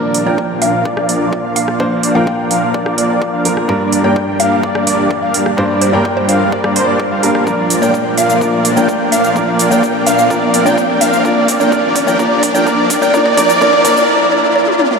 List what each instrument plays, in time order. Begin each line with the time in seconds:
Already playing: grand piano A#2 F3 A#3 D4 A#4, analog synth pad A#2 A#3 F4 D5 F5, supersaw synth F3 A#3 D4 A#4 D5, analog synth lead D5, riser
0.14 open hi-hat
0.25 grand piano A#2 F3 A#3 D4 A#4, supersaw synth F3 A#3 D4 A#4 G5, synth pluck D5, analog synth lead G5
0.38 kick
0.62 supersaw synth F3 A#3 D4 A#4 F5, analog synth lead F5, synth pluck F5, open hi-hat
0.85 supersaw synth F3 A#3 D4 A#4 D5, analog synth lead D5, kick
0.97 cross-stick
1.09 supersaw synth F3 A#3 D4 A#4 D5, analog synth lead D5, open hi-hat
1.33 kick
1.44 supersaw synth F3 A#3 D4 A#4 F5, analog synth lead F5
1.56 synth pluck F5, open hi-hat
1.68 cross-stick
1.79 grand piano A#2 F3 A#3 D4 C5, supersaw synth F3 A#3 D4 A#4 D5, analog synth lead D5, kick
2.03 open hi-hat
2.14 grand piano A#2 F3 A#3 D4 A#4, supersaw synth F3 A#3 D4 A#4 G5, synth pluck F5, analog synth lead G5
2.27 kick
2.51 supersaw synth F3 A#3 D4 A#4 F5, analog synth lead F5, open hi-hat
2.74 supersaw synth F3 A#3 D4 A#4 D5, analog synth lead D5, kick
2.86 cross-stick
2.98 supersaw synth F3 A#3 D4 A#4 D5, analog synth lead D5, open hi-hat
3.22 kick
3.33 supersaw synth F3 A#3 D4 A#4 F5, analog synth lead F5
3.45 grand piano F3 A#3 D4 A#4, open hi-hat
3.57 cross-stick
3.68 grand piano G2 G3 A#3 D4 A#4, supersaw synth G3 A#3 D4 A#4 D5, analog synth pad D4 G4, analog synth lead D5, kick
3.92 open hi-hat
4.03 grand piano G2 G3 A#3 D4 A#4, supersaw synth G3 A#3 D4 A#4 G5, synth pluck D5, analog synth lead G5
4.16 kick
4.40 supersaw synth G3 A#3 D4 A#4 F5, analog synth lead F5, synth pluck F5, open hi-hat
4.63 supersaw synth G3 A#3 D4 A#4 D5, analog synth lead D5, kick
4.75 cross-stick
4.87 supersaw synth G3 A#3 D4 A#4 D5, analog synth lead D5, open hi-hat
5.11 kick
5.22 supersaw synth G3 A#3 D4 A#4 F5, analog synth lead F5
5.34 open hi-hat
5.46 cross-stick
5.57 grand piano G2 G3 A#3 D4 C5, supersaw synth G3 A#3 D4 A#4 D5, analog synth pad F4, analog synth lead D5, kick
5.81 synth pluck C5, open hi-hat
5.92 grand piano G2 G3 A#3 D4 A#4, supersaw synth G3 A#3 D4 A#4 G5, synth pluck D5, analog synth lead G5
6.05 kick
6.17 synth pluck C5
6.29 supersaw synth G3 A#3 D4 A#4 F5, synth pluck C5, analog synth lead F5, open hi-hat
6.52 supersaw synth G3 A#3 D4 A#4 D5, analog synth lead D5, kick
6.64 cross-stick
6.76 supersaw synth G3 A#3 D4 A#4 C5, analog synth lead C5, open hi-hat
6.88 supersaw synth G3 A#3 D4 A#4 D5, analog synth lead D5
7.00 kick
7.11 supersaw synth G3 A#3 D4 A#4 F5, analog synth lead F5
7.22 grand piano G3 A#3 D4 A#4, open hi-hat
7.35 cross-stick
7.46 grand piano A#2 F3 A#3 D4 A#4, analog synth pad A#2 A#3 D5 F5, supersaw synth F3 A#3 D4 A#4 D5, analog synth lead D5, kick, shaker
7.70 open hi-hat, shaker
7.81 grand piano A#2 F3 A#3 D4 A#4, supersaw synth F3 A#3 D4 A#4 G5, synth pluck D5, analog synth lead G5, shaker
7.94 kick, shaker
8.17 supersaw synth F3 A#3 D4 A#4 F5, analog synth lead F5, synth pluck F5, open hi-hat, shaker
8.30 shaker
8.41 grand piano A#2 F3 A#3 D4 A#4, supersaw synth F3 A#3 D4 A#4 D5, analog synth lead D5, kick, shaker
8.65 open hi-hat, shaker
8.75 grand piano A#2 F3 A#3 D4 A#4, supersaw synth F3 A#3 D4 A#4 G5, synth pluck D5, analog synth lead G5, shaker
8.89 kick, shaker
9.12 supersaw synth F3 A#3 D4 A#4 F5, synth pluck F5, analog synth lead F5, open hi-hat, shaker
9.24 shaker
9.35 grand piano A#2 F3 A#3 D4 A#4, supersaw synth F3 A#3 D4 A#4 D5, analog synth lead D5, kick, shaker
9.59 open hi-hat, shaker
9.70 grand piano A#2 F3 A#3 D4 A#4, supersaw synth F3 A#3 D4 A#4 G5, synth pluck D5, analog synth lead G5, shaker
9.83 kick, shaker
10.06 supersaw synth F3 A#3 D4 A#4 F5, analog synth lead F5, synth pluck F5, open hi-hat, shaker
10.19 shaker
10.30 grand piano A#2 F3 A#3 D4 A#4, supersaw synth F3 A#3 D4 A#4 D5, analog synth lead D5, kick, shaker
10.54 open hi-hat, shaker
10.64 grand piano A#2 F3 A#3 D4 A#4, supersaw synth F3 A#3 D4 A#4 G5, synth pluck D5, analog synth lead G5, shaker
10.78 kick, shaker
11.01 supersaw synth F3 A#3 D4 A#4 F5, analog synth lead F5, synth pluck F5, open hi-hat, shaker
11.13 shaker
11.24 grand piano A#2 F3 A#3 D4 A#4, analog synth pad D#3 G4 A#5, supersaw synth F3 A#3 D4 A#4 D5, analog synth lead D5, kick, shaker
11.48 kick, open hi-hat, shaker
11.59 grand piano A#2 F3 A#3 D4 A#4, supersaw synth F3 A#3 D4 A#4 G5, synth pluck D5, analog synth lead G5, shaker
11.72 grand piano A#2 F3 A#3 D4 A#4, supersaw synth F3 A#3 D4 A#4 D5, analog synth lead D5, kick, shaker
11.96 kick, open hi-hat, shaker
12.06 grand piano A#2 F3 A#3 D4 A#4, supersaw synth F3 A#3 D4 A#4 G5, synth pluck D5, analog synth lead G5, shaker
12.19 grand piano A#2 F3 A#3 D4 A#4, supersaw synth F3 A#3 D4 A#4 D5, analog synth lead D5, kick, shaker
12.43 kick, open hi-hat, shaker
12.53 grand piano A#2 F3 A#3 D4 A#4, supersaw synth F3 A#3 D4 A#4 G5, synth pluck D5, analog synth lead G5, shaker
12.66 grand piano A#2 F3 A#3 D4 A#4, supersaw synth F3 A#3 D4 A#4 D5, analog synth lead D5, kick, shaker
12.90 kick, open hi-hat, shaker
13.01 grand piano A#2 F3 A#3 D4 A#4, supersaw synth F3 A#3 D4 A#4 G5, synth pluck D5, analog synth lead G5, shaker
13.13 grand piano A#2 F3 A#3 D4 A#4, supersaw synth F3 A#3 D4 A#4 D5, analog synth lead D5, synth pluck D5, analog synth pad D5, kick, shaker
13.26 kick
13.37 grand piano A#2 F3 A#3 D4 A#4, supersaw synth F3 A#3 D4 A#4 D5, analog synth lead D5, synth pluck D5, kick, open hi-hat, shaker
13.49 kick, shaker
13.60 grand piano A#2 F3 A#3 D4 A#4, supersaw synth F3 A#3 D4 A#4 D5, analog synth lead D5, synth pluck D5, kick, shaker
13.73 kick
13.84 grand piano A#2 F3 A#3 D4 A#4, supersaw synth F3 A#3 D4 A#4 D5, analog synth lead D5, synth pluck D5, kick, open hi-hat, shaker
13.97 kick, shaker
14.08 synth pluck D5
14.32 synth pluck D5
14.56 synth pluck D5
14.67 high tom
14.79 synth pluck D5, mid tom
14.91 mid tom